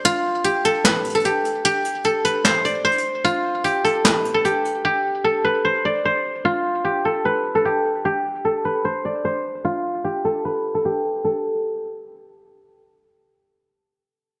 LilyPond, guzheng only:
\new Staff \with { instrumentName = "Guzheng" } { \time 4/4 \key a \minor \tempo 4 = 150 f'4 g'8 a'8 b'8. a'16 g'8 r8 | g'4 a'8 b'8 c''8 d''8 c''4 | f'4 g'8 a'8 b'8. a'16 g'8 r8 | g'4 a'8 b'8 c''8 d''8 c''4 |
f'4 g'8 a'8 b'8. a'16 g'8 r8 | g'4 a'8 b'8 c''8 d''8 c''4 | f'4 g'8 a'8 b'8. a'16 g'8 r8 | a'2. r4 |
r1 | }